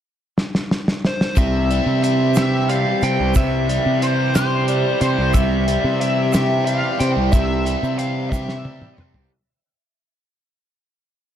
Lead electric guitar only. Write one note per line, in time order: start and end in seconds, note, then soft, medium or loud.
1.07 1.39 C5 medium
1.38 2.03 E5 loud
2.04 2.36 E5 medium
2.37 2.69 E5 medium
2.70 3.04 F5 medium
3.03 3.34 G5 loud
3.36 4.04 E5 loud
4.03 4.35 C5 medium
4.36 5.00 C5 medium
5.01 5.35 C5 medium
5.34 5.99 E5 medium
6.01 6.32 E5 medium
6.33 6.64 E5 loud
6.65 7.00 F5 medium
6.99 7.08 G5 medium
7.32 7.98 E5 medium
7.98 8.30 F5 medium
8.30 9.02 E5 medium